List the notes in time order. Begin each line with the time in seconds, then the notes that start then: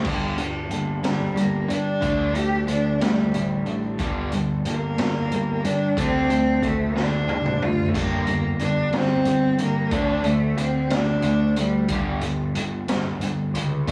0.05 G1 G2 D3 G3, kick, crash
0.37 G1 G2 D3 D4, closed hi-hat
0.70 G1 G2 D3 A#3, closed hi-hat
1.03 G1 G2 D3 D4, snare, closed hi-hat
1.07 G3
1.36 G1 G2 D3 G3, closed hi-hat
1.41 A#3
1.68 G2 D3 D4, closed hi-hat
2.01 D2 D3 A3 D4, kick, closed hi-hat
2.34 D2 D3 A3 D4 G4, closed hi-hat
2.67 D2 D3 A3 D4, closed hi-hat
3.00 D2 D3 G3 A3 D4, snare, closed hi-hat
3.32 A1 D3 G3 A3, closed hi-hat
3.65 D3 A3 D4, closed hi-hat
3.98 G1 G2 D3 G3, kick, closed hi-hat
4.32 G1 G2 D3 D4, closed hi-hat
4.65 G1 G2 D3 A#3, closed hi-hat
4.98 G1 G2 D3 D4, snare, closed hi-hat
5.31 G1 G2 D3 G3, closed hi-hat
5.64 G2 D3 D4, closed hi-hat
5.97 D2 D3 A3 C4 D4, kick, closed hi-hat
6.30 D2 D3 A3 D4, closed hi-hat
6.63 D2 D3 A3, kick, closed hi-hat
6.67 A3
6.96 D2 D3 A3 D4, snare
7.01 D4
7.27 D2 D3 G3 A3, high tom
7.46 mid tom
7.62 D3 A3 D4 F4, mid tom
7.89 A3
7.94 G1 G2 D3 G3, kick, closed hi-hat, splash
7.99 A#3
8.27 G1 G2 D3, closed hi-hat
8.59 G1 G2 D3 D4, closed hi-hat
8.92 G1 G2 D3, snare, closed hi-hat
8.96 C4
9.25 G1 G2 D3, closed hi-hat
9.58 G2 D3, closed hi-hat
9.63 A#3
9.91 D2 D3 A3 D4, kick, closed hi-hat
10.24 D2 D3 A3, closed hi-hat
10.56 D2 D3 A3 C4, closed hi-hat
10.89 D2 D3 A3 D4, snare, closed hi-hat
11.22 D2 D3 A3, closed hi-hat
11.56 D3 G3 A3, closed hi-hat
11.88 G1 G2 D3 G3, kick, closed hi-hat
12.21 G1 G2 D3, closed hi-hat
12.55 G1 G2 D3, closed hi-hat
12.88 G1 G2 D3, snare, closed hi-hat
13.21 G1 G2 D3, closed hi-hat
13.54 C#2 G2 D3, closed hi-hat
13.88 D2 D3 A3 D4, kick, closed hi-hat